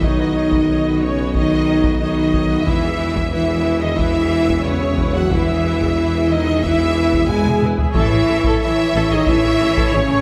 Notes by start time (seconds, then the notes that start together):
Already playing: B1
0.02 D#3 D#4 C#5 D#5, taiko
0.19 F#4 B4
0.36 D#4 C#5
0.52 F#4 B4, taiko
0.70 D#4 C#5
0.85 F#4 B4
1.01 C#3 D#4 C#5
1.05 C#4
1.19 F#4 B4
1.34 D#3 D#4 C#5 D#5, taiko
1.52 F#4 B4
1.69 D#4 C#5
1.84 F#4 B4, taiko
2.00 D#3 D#4 C#5 D#5
2.18 F#4 B4
2.33 D#4 C#5, taiko
2.49 F#4 B4
2.65 E1 E2 E3 E4 B4 E5, taiko
2.83 G#4 E5
2.99 E4 B4
3.15 G#4 E5, taiko
3.32 E3 E4 B4 E5
3.47 G#4 E5
3.63 E4 B4
3.79 D#4 G#4 D#5 E5
3.83 D#3
3.97 E3 E4 B4 E5, taiko
4.14 G#4 E5
4.31 E4 B4
4.47 G#4 E5, taiko
4.64 C#3 C#4 E4 B4 C#5
4.81 G#4 E5
4.97 E4 B4, taiko
5.14 F#3 F#4 G#4 E5 F#5
5.30 E3 E4 B4 E5, taiko
5.48 G#4 E5
5.65 E4 B4
5.81 G#4 E5, taiko
5.99 E4 B4
6.16 G#4 E5
6.30 D#3 D#4 E4 B4 D#5
6.48 G#4 E5
6.62 E3 E4 B4 E5, taiko
6.82 G#4 E5
6.97 E4 B4
7.13 G#4 E5, taiko
7.28 G#3 E4 G#4 B4 G#5, taiko low-mid
7.45 G#4 E5, taiko mid
7.62 E4 B4, taiko mid
7.78 G#4 E5, taiko low
7.94 A1 E3 E4 A4 C#5 E5, taiko
8.12 A1 G#4
8.28 A1 A4
8.44 A1 A4, taiko
8.60 E3 E4 E5
8.94 A1 A4
9.10 A1 D#3 D#4 G#4 D#5
9.27 A1 E3 E4 A4 E5, taiko
9.44 A1 G#4
9.59 A1 A4
9.76 A1 A4, taiko
9.93 A1 C#3 C#4 G#4 C#5
10.09 A1 A4